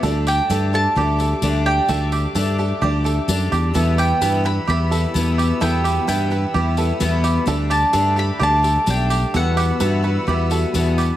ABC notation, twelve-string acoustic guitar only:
X:1
M:4/4
L:1/8
Q:1/4=129
K:Em
V:1 name="Twelve-string acoustic guitar"
[D,A,DG]2 [D,A,DG] [A,DG] [D,A,DG] [A,DG] [D,A,DG]2 | [A,DG]2 [D,A,DG] [A,DG] [D,A,DG] [A,DG] [D,A,DG]2 | [E,,B,,E,G,B,G]2 [E,,B,,E,G,B,G] [E,G,B,G] [E,G,B,G] [E,G,B,G] [E,,B,,E,G,B,G]2 | [E,,B,,E,G,B,G]2 [E,,B,,E,G,B,G] [E,G,B,G] [E,G,B,G] [E,G,B,G] [E,,B,,E,G,B,G]2 |
[D,A,DG]2 [D,A,DG] [A,DG] [D,A,DG] [A,DG] [D,A,DG]2 | [E,,B,,E,G,B,F]2 [E,,B,,E,G,B,F] [E,G,B,F] [E,G,B,F] [E,G,B,F] [E,,B,,E,G,B,F]2 |]